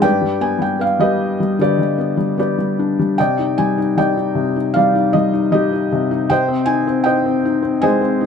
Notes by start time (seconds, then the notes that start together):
0.02 G2 B4 D5 G5
0.22 G3
0.41 B3 G#5
0.59 G3 G5
0.79 B3 F5
1.00 G3 G4 B4 D#5
1.40 G3
1.59 D3 G4 B4 D5
1.79 G3
1.98 B3
2.17 G3
2.38 B3 G4 B4 D5
2.59 G3
2.79 D4
2.99 G3
3.18 C3 D5 D#5 G5
3.39 D#4
3.58 G3 G#5
3.78 D#4
3.97 G3 D5 D#5 G5
4.17 D#4
4.35 C3
4.56 D#4
4.74 G3 D5 F5
4.95 D#4
5.13 G3 D#5
5.33 D#4
5.52 G3 G4 D#5
5.73 D#4
5.92 C3
6.11 D#4
6.30 C3 C5 D#5 G5
6.48 C4
6.66 D#4 G#5
6.87 C4
7.04 D#4 C5 D#5 G5
7.26 C4
7.45 D#4
7.63 C4
7.82 G#3 C5 D#5 G#5
8.01 C4
8.21 D#4